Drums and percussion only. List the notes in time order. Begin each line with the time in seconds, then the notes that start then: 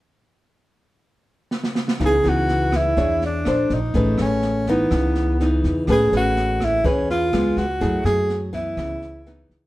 1.51 snare
1.64 snare
1.75 snare
1.88 snare
2.00 kick, cross-stick, snare
2.24 snare
2.48 snare
2.72 kick, cross-stick, snare
2.97 kick, snare
3.21 snare
3.45 cross-stick, snare
3.70 kick, snare
3.93 kick, snare
4.18 cross-stick, snare
4.42 snare
4.66 kick, snare
4.91 kick, cross-stick, snare
5.15 snare
5.40 snare
5.64 kick, snare
5.87 kick, cross-stick, snare
6.12 snare
6.36 snare
6.60 kick, cross-stick, snare
6.84 kick, snare
7.09 snare
7.33 cross-stick, snare
7.57 kick, snare
7.81 kick, snare
8.05 cross-stick, snare
8.29 snare
8.53 kick, snare
8.77 kick, cross-stick, snare
9.01 snare
9.26 snare
9.50 kick, snare